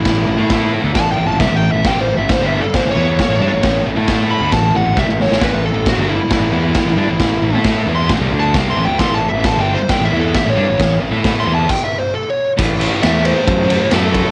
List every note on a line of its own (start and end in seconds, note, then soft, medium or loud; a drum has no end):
0.00 0.72 E4 medium
0.05 0.26 A1 medium
0.05 0.23 A2 medium
0.05 0.23 E3 medium
0.05 kick loud
0.05 snare loud
0.05 crash medium
0.26 0.39 A1 medium
0.26 0.38 A2 medium
0.26 0.36 E3 medium
0.37 0.81 A2 medium
0.37 0.81 A3 medium
0.37 0.83 E4 medium
0.37 0.83 A4 loud
0.50 kick loud
0.50 snare loud
0.50 crash medium
0.82 0.94 D2 loud
0.82 0.93 D3 medium
0.82 0.94 A3 medium
0.94 1.16 A1 medium
0.94 1.12 A2 medium
0.94 1.13 E3 medium
0.94 1.11 A5 loud
0.94 kick loud
0.94 snare loud
0.94 crash medium
1.12 1.27 G5 medium
1.17 1.28 A1 medium
1.17 1.27 A2 medium
1.17 1.27 E3 medium
1.27 1.39 A1 medium
1.27 1.40 A2 medium
1.27 1.40 E3 medium
1.27 1.40 A5 medium
1.39 1.50 C2 medium
1.39 1.51 C3 medium
1.39 1.51 G3 loud
1.39 1.56 E5 medium
1.39 kick loud
1.39 snare loud
1.39 crash medium
1.51 1.72 A1 medium
1.51 1.69 A2 medium
1.51 1.70 E3 medium
1.56 1.70 G5 medium
1.72 1.84 A1 medium
1.72 1.84 A2 medium
1.72 1.85 E3 medium
1.72 1.85 E5 medium
1.84 1.95 A1 loud
1.84 1.95 A2 medium
1.84 1.95 E3 loud
1.84 2.01 G5 medium
1.84 kick loud
1.84 snare loud
1.84 crash medium
1.95 2.16 A1 medium
1.95 2.14 A2 medium
1.95 2.14 E3 medium
2.01 2.15 C5 medium
2.17 2.38 A1 medium
2.17 2.36 A2 medium
2.17 2.37 E3 medium
2.17 2.30 E5 medium
2.29 2.45 C5 medium
2.29 kick loud
2.29 snare loud
2.29 crash medium
2.39 2.60 G1 medium
2.39 2.63 G2 medium
2.39 2.63 D3 medium
2.39 2.63 G3 loud
2.46 2.60 E5 medium
2.60 2.74 A4 medium
2.60 muted fingered electric bass stroke soft
2.60 muted distorted electric guitar stroke medium
2.74 2.91 C5 medium
2.74 muted fingered electric bass stroke soft
2.74 muted distorted electric guitar stroke medium
2.74 kick loud
2.74 snare loud
2.74 crash medium
2.85 2.96 A1 medium
2.85 2.95 A2 medium
2.85 2.95 E3 medium
2.91 3.76 C#5 medium
2.96 3.17 E2 loud
2.96 3.18 E3 medium
2.96 3.18 B3 loud
2.96 3.18 E4 loud
3.18 muted fingered electric bass stroke soft
3.18 muted distorted electric guitar stroke medium
3.18 kick loud
3.18 snare loud
3.18 crash medium
3.29 3.39 A1 medium
3.29 3.40 A2 medium
3.29 3.40 E3 medium
3.40 3.51 G2 loud
3.40 3.51 G3 medium
3.40 3.52 D4 medium
3.51 3.62 A1 medium
3.51 3.62 A2 medium
3.51 3.62 E3 medium
3.63 3.84 A1 medium
3.63 3.81 A2 medium
3.63 3.81 E3 medium
3.63 kick loud
3.63 snare loud
3.63 crash medium
3.86 3.96 A1 medium
3.86 3.97 A2 medium
3.86 3.96 E3 medium
3.96 4.38 A2 medium
3.96 4.40 A3 loud
3.96 4.41 E4 medium
3.96 4.41 A4 medium
4.07 kick loud
4.07 snare loud
4.07 crash medium
4.31 4.52 B5 medium
4.40 4.51 D2 loud
4.40 4.52 D3 medium
4.40 4.52 A3 medium
4.52 4.73 A1 medium
4.52 4.70 A2 medium
4.52 4.71 E3 medium
4.52 4.74 A5 medium
4.52 kick loud
4.52 snare loud
4.52 crash medium
4.74 4.84 A1 medium
4.74 4.84 A2 medium
4.74 4.84 E3 medium
4.74 4.97 F#5 medium
4.85 4.96 A1 medium
4.85 4.96 A2 medium
4.85 4.97 E3 medium
4.96 5.07 C2 medium
4.96 5.07 C3 medium
4.96 5.07 G3 loud
4.96 5.20 E5 medium
4.96 kick loud
4.96 snare medium
5.07 5.29 A1 medium
5.07 5.26 A2 medium
5.07 5.26 E3 medium
5.07 snare medium
5.20 5.42 C#5 medium
5.20 snare medium
5.30 5.41 A1 medium
5.30 5.38 A2 medium
5.30 5.39 E3 medium
5.30 snare loud
5.39 5.52 A1 loud
5.39 5.51 A2 loud
5.39 5.51 E3 loud
5.39 kick loud
5.39 snare loud
5.39 crash medium
5.43 5.64 B4 medium
5.52 5.74 A1 medium
5.52 5.70 A2 medium
5.52 5.70 E3 medium
5.66 5.86 A4 medium
5.74 5.96 A1 medium
5.74 5.92 A2 medium
5.74 5.93 E3 medium
5.86 6.09 F#4 medium
5.86 kick loud
5.86 snare loud
5.86 crash medium
5.95 6.18 G1 loud
5.95 6.18 G2 medium
5.95 6.18 D3 loud
5.95 6.19 G3 loud
6.09 6.30 E4 medium
6.19 muted distorted electric guitar stroke medium
6.19 muted fingered electric bass stroke soft
6.29 7.62 E4 loud
6.29 muted distorted electric guitar stroke medium
6.29 muted fingered electric bass stroke soft
6.29 kick loud
6.29 snare loud
6.29 crash medium
6.40 6.51 A1 medium
6.40 6.52 A2 medium
6.40 6.51 E3 medium
6.52 6.73 E2 medium
6.52 6.74 E3 medium
6.52 6.75 B3 medium
6.52 6.75 E4 medium
6.74 muted fingered electric bass stroke soft
6.74 muted distorted electric guitar stroke medium
6.74 kick loud
6.74 snare loud
6.74 crash medium
6.85 6.95 A1 medium
6.85 6.97 A2 medium
6.85 6.96 E3 medium
6.96 7.07 G2 loud
6.96 7.08 G3 medium
6.96 7.08 D4 loud
7.07 7.18 A1 medium
7.07 7.18 A2 medium
7.07 7.18 E3 medium
7.19 7.41 A1 medium
7.19 7.37 A2 medium
7.19 7.38 E3 medium
7.19 kick loud
7.19 snare loud
7.19 crash medium
7.42 7.53 A1 medium
7.42 7.54 A2 medium
7.42 7.53 E3 medium
7.53 7.85 A2 medium
7.53 7.86 A3 medium
7.53 7.87 E4 medium
7.53 7.87 A4 loud
7.64 kick loud
7.64 snare loud
7.64 crash medium
7.86 8.07 E2 medium
7.86 8.07 E3 medium
7.86 8.09 B3 medium
7.86 8.10 E4 loud
7.95 8.09 C6 medium
8.08 8.19 A1 loud
8.08 8.19 A2 medium
8.08 8.20 E3 medium
8.08 kick loud
8.08 snare loud
8.08 crash medium
8.20 8.30 C2 medium
8.20 8.31 C3 medium
8.20 8.31 G3 medium
8.31 8.52 D2 loud
8.31 8.54 D3 medium
8.31 8.54 A3 medium
8.31 8.54 D4 loud
8.39 8.54 A5 medium
8.54 8.75 C2 medium
8.54 8.76 C3 loud
8.54 8.77 G3 medium
8.54 8.77 C4 loud
8.54 kick loud
8.54 snare loud
8.54 crash medium
8.70 8.84 C6 medium
8.76 8.87 A1 loud
8.76 8.87 A2 loud
8.76 8.88 E3 loud
8.85 8.98 D2 medium
8.85 8.99 D3 medium
8.85 8.99 G5 medium
8.89 8.99 A3 loud
8.99 9.10 A1 loud
8.99 9.10 A2 medium
8.99 9.10 E3 loud
8.99 9.13 C6 loud
8.99 kick loud
8.99 snare loud
8.99 crash medium
9.10 9.31 A1 medium
9.10 9.29 A2 medium
9.10 9.29 E3 medium
9.14 9.29 A5 medium
9.29 9.54 A1 medium
9.29 9.43 E5 medium
9.34 9.51 A2 medium
9.34 9.52 E3 medium
9.44 9.61 A5 medium
9.44 kick loud
9.44 snare loud
9.44 crash medium
9.55 9.77 G1 loud
9.55 9.77 G2 medium
9.55 9.77 D3 loud
9.55 9.78 G3 loud
9.61 9.74 G5 medium
9.74 9.88 C5 medium
9.74 muted fingered electric bass stroke soft
9.74 muted distorted electric guitar stroke medium
9.89 10.04 G5 medium
9.89 muted distorted electric guitar stroke medium
9.89 muted fingered electric bass stroke soft
9.89 kick loud
9.89 snare loud
9.89 crash medium
9.99 10.11 A1 medium
9.99 10.09 A2 medium
9.99 10.09 E3 medium
10.05 10.19 E5 loud
10.10 10.33 E2 medium
10.10 10.32 E3 medium
10.10 10.33 B3 medium
10.10 10.33 E4 loud
10.20 10.34 A4 medium
10.33 10.50 E5 medium
10.33 muted distorted electric guitar stroke medium
10.33 muted fingered electric bass stroke soft
10.33 kick loud
10.33 snare loud
10.33 crash medium
10.44 10.56 A1 medium
10.44 10.56 A2 medium
10.44 10.55 E3 medium
10.50 10.93 C#5 medium
10.56 10.67 G2 loud
10.56 10.67 G3 medium
10.56 10.67 D4 medium
10.67 10.78 A1 medium
10.67 10.76 A2 medium
10.67 10.77 E3 medium
10.78 11.00 A1 medium
10.78 10.96 A2 medium
10.78 10.96 E3 medium
10.78 kick loud
10.78 snare loud
10.78 crash medium
11.01 11.12 A1 medium
11.01 11.12 A2 medium
11.01 11.10 E3 medium
11.11 11.44 A2 medium
11.11 11.45 A3 medium
11.11 11.45 E4 loud
11.11 11.46 A4 loud
11.24 kick loud
11.24 snare loud
11.24 crash medium
11.40 11.54 C6 medium
11.45 11.67 E2 medium
11.45 11.67 E3 loud
11.45 11.68 B3 medium
11.45 11.68 E4 loud
11.55 11.69 A5 medium
11.69 11.84 G5 loud
11.69 kick loud
11.69 crash loud
11.84 11.98 E5 medium
11.98 12.13 C5 medium
12.14 12.28 A4 medium
12.30 12.51 C#5 loud
12.57 12.87 A1 loud
12.57 13.01 A2 loud
12.57 12.83 E3 loud
12.57 12.79 A3 loud
12.57 kick loud
12.57 crash loud
12.79 13.03 E3 medium
12.79 13.05 A3 medium
12.79 ride medium
13.02 13.32 E2 medium
13.02 13.90 A2 loud
13.02 13.71 E3 medium
13.02 13.67 A3 loud
13.02 13.25 E5 medium
13.02 snare loud
13.02 ride loud
13.25 13.90 C5 medium
13.25 ride medium
13.47 13.76 F#2 loud
13.47 kick loud
13.47 ride loud
13.69 13.92 E3 medium
13.69 13.94 A3 medium
13.69 ride medium
13.91 14.20 F#2 medium
13.91 14.31 A2 medium
13.91 14.15 E3 medium
13.91 14.31 A4 medium
13.91 snare loud
13.91 ride loud
13.95 14.11 A3 medium
14.13 14.31 E3 medium
14.13 14.31 A3 medium
14.13 kick medium
14.13 ride medium